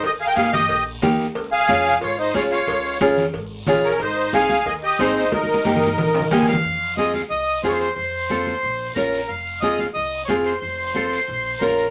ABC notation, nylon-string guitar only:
X:1
M:4/4
L:1/8
Q:1/4=182
K:Fm
V:1 name="Nylon-string guitar"
z2 [B,EG] z3 [B,EG] z | z2 [DFA] z3 [DFA] z | z2 [DFA] z3 [DFA] z | z2 [CEA] z3 [CEA] z |
z2 [B,EG] z3 [B,EG] z | z2 [CFA] z3 [CFA] z | z2 [CF=A] z3 [DFB] z | z2 [CFA] z3 [CFA] z |
z2 [CF=A] z3 [DFB] z |]